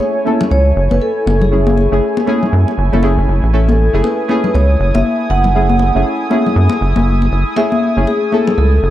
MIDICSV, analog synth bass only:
0, 0, Header, 1, 2, 480
1, 0, Start_track
1, 0, Tempo, 504202
1, 1445, Time_signature, 4, 2, 24, 8
1, 8474, End_track
2, 0, Start_track
2, 0, Title_t, "Analog synth bass"
2, 0, Program_c, 0, 38
2, 485, Note_on_c, 0, 37, 76
2, 689, Note_off_c, 0, 37, 0
2, 726, Note_on_c, 0, 30, 98
2, 841, Note_off_c, 0, 30, 0
2, 868, Note_on_c, 0, 30, 97
2, 947, Note_off_c, 0, 30, 0
2, 1205, Note_on_c, 0, 30, 102
2, 1784, Note_off_c, 0, 30, 0
2, 1827, Note_on_c, 0, 30, 98
2, 1907, Note_off_c, 0, 30, 0
2, 2406, Note_on_c, 0, 42, 91
2, 2521, Note_off_c, 0, 42, 0
2, 2645, Note_on_c, 0, 30, 94
2, 2761, Note_off_c, 0, 30, 0
2, 2787, Note_on_c, 0, 30, 95
2, 3021, Note_off_c, 0, 30, 0
2, 3027, Note_on_c, 0, 30, 93
2, 3107, Note_off_c, 0, 30, 0
2, 3126, Note_on_c, 0, 30, 92
2, 3241, Note_off_c, 0, 30, 0
2, 3266, Note_on_c, 0, 33, 89
2, 3704, Note_off_c, 0, 33, 0
2, 3747, Note_on_c, 0, 30, 95
2, 3827, Note_off_c, 0, 30, 0
2, 4326, Note_on_c, 0, 37, 83
2, 4529, Note_off_c, 0, 37, 0
2, 4566, Note_on_c, 0, 30, 98
2, 4681, Note_off_c, 0, 30, 0
2, 4708, Note_on_c, 0, 30, 101
2, 4787, Note_off_c, 0, 30, 0
2, 5045, Note_on_c, 0, 30, 102
2, 5625, Note_off_c, 0, 30, 0
2, 5668, Note_on_c, 0, 30, 98
2, 5747, Note_off_c, 0, 30, 0
2, 6245, Note_on_c, 0, 42, 89
2, 6360, Note_off_c, 0, 42, 0
2, 6486, Note_on_c, 0, 30, 91
2, 6601, Note_off_c, 0, 30, 0
2, 6629, Note_on_c, 0, 30, 96
2, 6937, Note_off_c, 0, 30, 0
2, 6967, Note_on_c, 0, 30, 86
2, 7081, Note_off_c, 0, 30, 0
2, 7587, Note_on_c, 0, 30, 104
2, 7667, Note_off_c, 0, 30, 0
2, 8166, Note_on_c, 0, 37, 79
2, 8369, Note_off_c, 0, 37, 0
2, 8405, Note_on_c, 0, 30, 98
2, 8474, Note_off_c, 0, 30, 0
2, 8474, End_track
0, 0, End_of_file